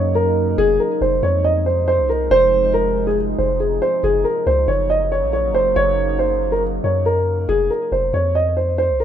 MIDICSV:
0, 0, Header, 1, 4, 480
1, 0, Start_track
1, 0, Tempo, 431655
1, 646, Time_signature, 4, 2, 24, 8
1, 10060, End_track
2, 0, Start_track
2, 0, Title_t, "Grand piano"
2, 0, Program_c, 0, 0
2, 0, Note_on_c, 0, 73, 76
2, 152, Note_off_c, 0, 73, 0
2, 169, Note_on_c, 0, 70, 82
2, 619, Note_off_c, 0, 70, 0
2, 647, Note_on_c, 0, 68, 105
2, 874, Note_off_c, 0, 68, 0
2, 887, Note_on_c, 0, 70, 73
2, 1114, Note_off_c, 0, 70, 0
2, 1130, Note_on_c, 0, 72, 77
2, 1355, Note_off_c, 0, 72, 0
2, 1368, Note_on_c, 0, 73, 81
2, 1594, Note_off_c, 0, 73, 0
2, 1606, Note_on_c, 0, 75, 88
2, 1833, Note_off_c, 0, 75, 0
2, 1847, Note_on_c, 0, 72, 76
2, 2070, Note_off_c, 0, 72, 0
2, 2087, Note_on_c, 0, 72, 92
2, 2314, Note_off_c, 0, 72, 0
2, 2329, Note_on_c, 0, 70, 79
2, 2555, Note_off_c, 0, 70, 0
2, 2570, Note_on_c, 0, 72, 110
2, 3019, Note_off_c, 0, 72, 0
2, 3044, Note_on_c, 0, 70, 86
2, 3390, Note_off_c, 0, 70, 0
2, 3414, Note_on_c, 0, 68, 82
2, 3520, Note_off_c, 0, 68, 0
2, 3764, Note_on_c, 0, 72, 78
2, 3992, Note_off_c, 0, 72, 0
2, 4004, Note_on_c, 0, 68, 69
2, 4232, Note_off_c, 0, 68, 0
2, 4246, Note_on_c, 0, 72, 88
2, 4473, Note_off_c, 0, 72, 0
2, 4490, Note_on_c, 0, 68, 96
2, 4715, Note_off_c, 0, 68, 0
2, 4719, Note_on_c, 0, 70, 79
2, 4950, Note_off_c, 0, 70, 0
2, 4967, Note_on_c, 0, 72, 85
2, 5194, Note_off_c, 0, 72, 0
2, 5204, Note_on_c, 0, 73, 79
2, 5432, Note_off_c, 0, 73, 0
2, 5445, Note_on_c, 0, 75, 89
2, 5673, Note_off_c, 0, 75, 0
2, 5691, Note_on_c, 0, 73, 79
2, 5912, Note_off_c, 0, 73, 0
2, 5928, Note_on_c, 0, 73, 79
2, 6154, Note_off_c, 0, 73, 0
2, 6166, Note_on_c, 0, 72, 88
2, 6393, Note_off_c, 0, 72, 0
2, 6406, Note_on_c, 0, 73, 101
2, 6857, Note_off_c, 0, 73, 0
2, 6883, Note_on_c, 0, 72, 81
2, 7229, Note_off_c, 0, 72, 0
2, 7249, Note_on_c, 0, 70, 80
2, 7358, Note_off_c, 0, 70, 0
2, 7606, Note_on_c, 0, 73, 76
2, 7833, Note_off_c, 0, 73, 0
2, 7850, Note_on_c, 0, 70, 82
2, 8299, Note_off_c, 0, 70, 0
2, 8326, Note_on_c, 0, 68, 102
2, 8553, Note_off_c, 0, 68, 0
2, 8567, Note_on_c, 0, 70, 73
2, 8794, Note_off_c, 0, 70, 0
2, 8810, Note_on_c, 0, 72, 75
2, 9035, Note_off_c, 0, 72, 0
2, 9050, Note_on_c, 0, 73, 81
2, 9275, Note_off_c, 0, 73, 0
2, 9286, Note_on_c, 0, 75, 88
2, 9513, Note_off_c, 0, 75, 0
2, 9527, Note_on_c, 0, 72, 71
2, 9750, Note_off_c, 0, 72, 0
2, 9766, Note_on_c, 0, 72, 86
2, 9993, Note_off_c, 0, 72, 0
2, 10009, Note_on_c, 0, 70, 78
2, 10060, Note_off_c, 0, 70, 0
2, 10060, End_track
3, 0, Start_track
3, 0, Title_t, "Ambient pad"
3, 0, Program_c, 1, 92
3, 0, Note_on_c, 1, 49, 80
3, 0, Note_on_c, 1, 54, 74
3, 0, Note_on_c, 1, 58, 73
3, 0, Note_on_c, 1, 63, 87
3, 607, Note_off_c, 1, 49, 0
3, 607, Note_off_c, 1, 54, 0
3, 607, Note_off_c, 1, 58, 0
3, 644, Note_on_c, 1, 48, 80
3, 644, Note_on_c, 1, 53, 72
3, 644, Note_on_c, 1, 56, 76
3, 4441, Note_off_c, 1, 63, 0
3, 4446, Note_off_c, 1, 48, 0
3, 4446, Note_off_c, 1, 53, 0
3, 4446, Note_off_c, 1, 56, 0
3, 4484, Note_on_c, 1, 49, 79
3, 4485, Note_on_c, 1, 54, 74
3, 4485, Note_on_c, 1, 58, 76
3, 4485, Note_on_c, 1, 63, 86
3, 8287, Note_off_c, 1, 49, 0
3, 8287, Note_off_c, 1, 54, 0
3, 8287, Note_off_c, 1, 58, 0
3, 8287, Note_off_c, 1, 63, 0
3, 10060, End_track
4, 0, Start_track
4, 0, Title_t, "808-style bass"
4, 0, Program_c, 2, 38
4, 0, Note_on_c, 2, 42, 104
4, 616, Note_off_c, 2, 42, 0
4, 646, Note_on_c, 2, 29, 114
4, 876, Note_off_c, 2, 29, 0
4, 1126, Note_on_c, 2, 29, 109
4, 1356, Note_off_c, 2, 29, 0
4, 1366, Note_on_c, 2, 41, 107
4, 2212, Note_on_c, 2, 36, 95
4, 2229, Note_off_c, 2, 41, 0
4, 2548, Note_off_c, 2, 36, 0
4, 2565, Note_on_c, 2, 29, 113
4, 3721, Note_off_c, 2, 29, 0
4, 3766, Note_on_c, 2, 29, 103
4, 4227, Note_off_c, 2, 29, 0
4, 4486, Note_on_c, 2, 30, 111
4, 4716, Note_off_c, 2, 30, 0
4, 4966, Note_on_c, 2, 37, 107
4, 5196, Note_off_c, 2, 37, 0
4, 5206, Note_on_c, 2, 30, 109
4, 5812, Note_on_c, 2, 34, 100
4, 5829, Note_off_c, 2, 30, 0
4, 6108, Note_on_c, 2, 30, 102
4, 6125, Note_off_c, 2, 34, 0
4, 6390, Note_off_c, 2, 30, 0
4, 6405, Note_on_c, 2, 30, 112
4, 7561, Note_off_c, 2, 30, 0
4, 7605, Note_on_c, 2, 42, 105
4, 8297, Note_off_c, 2, 42, 0
4, 8326, Note_on_c, 2, 29, 112
4, 8556, Note_off_c, 2, 29, 0
4, 8806, Note_on_c, 2, 29, 105
4, 9036, Note_off_c, 2, 29, 0
4, 9046, Note_on_c, 2, 41, 106
4, 9893, Note_on_c, 2, 36, 100
4, 9910, Note_off_c, 2, 41, 0
4, 10060, Note_off_c, 2, 36, 0
4, 10060, End_track
0, 0, End_of_file